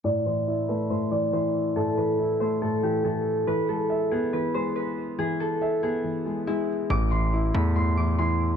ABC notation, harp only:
X:1
M:4/4
L:1/8
Q:1/4=140
K:Am
V:1 name="Harp"
d c2 B c d c2 | A B2 c A G A2 | B A2 ^G B c B2 | ^G A2 G3 E z |
d' c'2 b c' d' c'2 |]